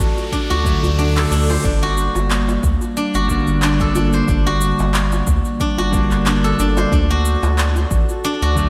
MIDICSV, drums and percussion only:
0, 0, Header, 1, 3, 480
1, 0, Start_track
1, 0, Tempo, 659341
1, 1198, Time_signature, 4, 2, 24, 8
1, 6326, End_track
2, 0, Start_track
2, 0, Title_t, "Djembe"
2, 125, Note_on_c, 9, 63, 32
2, 198, Note_off_c, 9, 63, 0
2, 368, Note_on_c, 9, 63, 59
2, 441, Note_off_c, 9, 63, 0
2, 606, Note_on_c, 9, 64, 77
2, 679, Note_off_c, 9, 64, 0
2, 1091, Note_on_c, 9, 62, 62
2, 1093, Note_on_c, 9, 63, 35
2, 1164, Note_off_c, 9, 62, 0
2, 1166, Note_off_c, 9, 63, 0
2, 1330, Note_on_c, 9, 62, 39
2, 1403, Note_off_c, 9, 62, 0
2, 1567, Note_on_c, 9, 62, 58
2, 1640, Note_off_c, 9, 62, 0
2, 1809, Note_on_c, 9, 62, 46
2, 1882, Note_off_c, 9, 62, 0
2, 2046, Note_on_c, 9, 63, 42
2, 2118, Note_off_c, 9, 63, 0
2, 2878, Note_on_c, 9, 64, 82
2, 2951, Note_off_c, 9, 64, 0
2, 3493, Note_on_c, 9, 62, 64
2, 3566, Note_off_c, 9, 62, 0
2, 3732, Note_on_c, 9, 62, 54
2, 3804, Note_off_c, 9, 62, 0
2, 4207, Note_on_c, 9, 63, 65
2, 4280, Note_off_c, 9, 63, 0
2, 4928, Note_on_c, 9, 62, 63
2, 5001, Note_off_c, 9, 62, 0
2, 5174, Note_on_c, 9, 62, 32
2, 5247, Note_off_c, 9, 62, 0
2, 5410, Note_on_c, 9, 62, 68
2, 5483, Note_off_c, 9, 62, 0
2, 5649, Note_on_c, 9, 62, 53
2, 5722, Note_off_c, 9, 62, 0
2, 5889, Note_on_c, 9, 63, 32
2, 5961, Note_off_c, 9, 63, 0
2, 6326, End_track
3, 0, Start_track
3, 0, Title_t, "Drums"
3, 0, Note_on_c, 9, 69, 77
3, 71, Note_off_c, 9, 69, 0
3, 128, Note_on_c, 9, 69, 33
3, 201, Note_off_c, 9, 69, 0
3, 235, Note_on_c, 9, 36, 58
3, 240, Note_on_c, 9, 69, 43
3, 308, Note_off_c, 9, 36, 0
3, 312, Note_off_c, 9, 69, 0
3, 371, Note_on_c, 9, 69, 21
3, 444, Note_off_c, 9, 69, 0
3, 475, Note_on_c, 9, 36, 97
3, 481, Note_on_c, 9, 69, 71
3, 548, Note_off_c, 9, 36, 0
3, 553, Note_off_c, 9, 69, 0
3, 611, Note_on_c, 9, 69, 34
3, 684, Note_off_c, 9, 69, 0
3, 721, Note_on_c, 9, 69, 39
3, 794, Note_off_c, 9, 69, 0
3, 851, Note_on_c, 9, 39, 72
3, 852, Note_on_c, 9, 69, 20
3, 924, Note_off_c, 9, 39, 0
3, 925, Note_off_c, 9, 69, 0
3, 962, Note_on_c, 9, 69, 78
3, 1035, Note_off_c, 9, 69, 0
3, 1091, Note_on_c, 9, 69, 31
3, 1163, Note_off_c, 9, 69, 0
3, 1196, Note_on_c, 9, 36, 113
3, 1200, Note_on_c, 9, 69, 44
3, 1269, Note_off_c, 9, 36, 0
3, 1272, Note_off_c, 9, 69, 0
3, 1438, Note_on_c, 9, 69, 72
3, 1510, Note_off_c, 9, 69, 0
3, 1571, Note_on_c, 9, 69, 31
3, 1644, Note_off_c, 9, 69, 0
3, 1678, Note_on_c, 9, 39, 99
3, 1679, Note_on_c, 9, 69, 43
3, 1751, Note_off_c, 9, 39, 0
3, 1752, Note_off_c, 9, 69, 0
3, 1810, Note_on_c, 9, 69, 31
3, 1882, Note_off_c, 9, 69, 0
3, 1917, Note_on_c, 9, 36, 101
3, 1918, Note_on_c, 9, 69, 75
3, 1989, Note_off_c, 9, 36, 0
3, 1991, Note_off_c, 9, 69, 0
3, 2049, Note_on_c, 9, 69, 32
3, 2122, Note_off_c, 9, 69, 0
3, 2161, Note_on_c, 9, 69, 44
3, 2234, Note_off_c, 9, 69, 0
3, 2289, Note_on_c, 9, 69, 30
3, 2362, Note_off_c, 9, 69, 0
3, 2397, Note_on_c, 9, 36, 57
3, 2399, Note_on_c, 9, 69, 72
3, 2469, Note_off_c, 9, 36, 0
3, 2472, Note_off_c, 9, 69, 0
3, 2528, Note_on_c, 9, 69, 34
3, 2601, Note_off_c, 9, 69, 0
3, 2637, Note_on_c, 9, 39, 103
3, 2638, Note_on_c, 9, 69, 41
3, 2709, Note_off_c, 9, 39, 0
3, 2710, Note_off_c, 9, 69, 0
3, 2766, Note_on_c, 9, 69, 28
3, 2767, Note_on_c, 9, 36, 97
3, 2839, Note_off_c, 9, 69, 0
3, 2840, Note_off_c, 9, 36, 0
3, 2876, Note_on_c, 9, 69, 80
3, 2949, Note_off_c, 9, 69, 0
3, 3005, Note_on_c, 9, 69, 31
3, 3078, Note_off_c, 9, 69, 0
3, 3116, Note_on_c, 9, 69, 48
3, 3117, Note_on_c, 9, 36, 121
3, 3189, Note_off_c, 9, 69, 0
3, 3190, Note_off_c, 9, 36, 0
3, 3356, Note_on_c, 9, 69, 76
3, 3429, Note_off_c, 9, 69, 0
3, 3487, Note_on_c, 9, 69, 34
3, 3559, Note_off_c, 9, 69, 0
3, 3597, Note_on_c, 9, 39, 102
3, 3598, Note_on_c, 9, 69, 44
3, 3670, Note_off_c, 9, 39, 0
3, 3671, Note_off_c, 9, 69, 0
3, 3727, Note_on_c, 9, 69, 32
3, 3800, Note_off_c, 9, 69, 0
3, 3837, Note_on_c, 9, 69, 86
3, 3838, Note_on_c, 9, 36, 109
3, 3910, Note_off_c, 9, 36, 0
3, 3910, Note_off_c, 9, 69, 0
3, 3968, Note_on_c, 9, 69, 35
3, 4041, Note_off_c, 9, 69, 0
3, 4077, Note_on_c, 9, 36, 68
3, 4078, Note_on_c, 9, 69, 43
3, 4150, Note_off_c, 9, 36, 0
3, 4151, Note_off_c, 9, 69, 0
3, 4211, Note_on_c, 9, 69, 34
3, 4284, Note_off_c, 9, 69, 0
3, 4318, Note_on_c, 9, 36, 102
3, 4319, Note_on_c, 9, 69, 72
3, 4390, Note_off_c, 9, 36, 0
3, 4392, Note_off_c, 9, 69, 0
3, 4449, Note_on_c, 9, 39, 35
3, 4450, Note_on_c, 9, 69, 37
3, 4522, Note_off_c, 9, 39, 0
3, 4523, Note_off_c, 9, 69, 0
3, 4558, Note_on_c, 9, 39, 104
3, 4559, Note_on_c, 9, 69, 44
3, 4630, Note_off_c, 9, 39, 0
3, 4632, Note_off_c, 9, 69, 0
3, 4690, Note_on_c, 9, 69, 30
3, 4762, Note_off_c, 9, 69, 0
3, 4799, Note_on_c, 9, 69, 85
3, 4872, Note_off_c, 9, 69, 0
3, 4929, Note_on_c, 9, 69, 34
3, 5002, Note_off_c, 9, 69, 0
3, 5037, Note_on_c, 9, 36, 125
3, 5042, Note_on_c, 9, 69, 45
3, 5110, Note_off_c, 9, 36, 0
3, 5115, Note_off_c, 9, 69, 0
3, 5280, Note_on_c, 9, 69, 79
3, 5353, Note_off_c, 9, 69, 0
3, 5409, Note_on_c, 9, 69, 33
3, 5482, Note_off_c, 9, 69, 0
3, 5520, Note_on_c, 9, 39, 98
3, 5521, Note_on_c, 9, 69, 48
3, 5593, Note_off_c, 9, 39, 0
3, 5594, Note_off_c, 9, 69, 0
3, 5651, Note_on_c, 9, 69, 34
3, 5724, Note_off_c, 9, 69, 0
3, 5758, Note_on_c, 9, 36, 111
3, 5759, Note_on_c, 9, 69, 88
3, 5831, Note_off_c, 9, 36, 0
3, 5832, Note_off_c, 9, 69, 0
3, 5890, Note_on_c, 9, 69, 37
3, 5963, Note_off_c, 9, 69, 0
3, 6000, Note_on_c, 9, 69, 44
3, 6073, Note_off_c, 9, 69, 0
3, 6130, Note_on_c, 9, 69, 32
3, 6203, Note_off_c, 9, 69, 0
3, 6238, Note_on_c, 9, 36, 61
3, 6239, Note_on_c, 9, 69, 76
3, 6311, Note_off_c, 9, 36, 0
3, 6312, Note_off_c, 9, 69, 0
3, 6326, End_track
0, 0, End_of_file